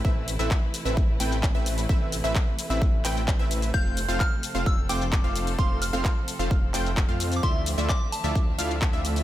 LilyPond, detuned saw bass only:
\new Staff \with { instrumentName = "Detuned saw bass" } { \clef bass \time 4/4 \key a \minor \tempo 4 = 130 a,,8. a,,16 r8. a,,8. a,,8. a,,8. | a,,8. a,,16 r8. a,,8. a,,8. a,,8. | f,,8. f,,16 r8. f,,8. f,,8. f,,8. | f,,8. f,,16 r8. f,,8. f,,8. f,8. |
d,8. d,16 r8. d,8. d,8. d,8. | }